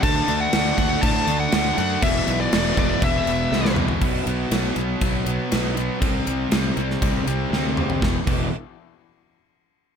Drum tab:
CC |x-x-x-x-x-x-x-x-|x-x-x-x-x-x-----|x---------------|----------------|
RD |----------------|----------------|--x-x-x-x-x-x-x-|x-x-x-x-x-x-----|
SD |----o-------o---|----o-------oo--|----o-------o---|----o--o----o---|
T2 |----------------|--------------o-|----------------|--------------o-|
FT |----------------|---------------o|----------------|---------------o|
BD |o-----o-o-------|o-----o-o-------|o-------o-------|o-------o-------|

CC |--x-------------|
RD |----------------|
SD |o---------------|
T2 |----------------|
FT |----------------|
BD |o-o-------------|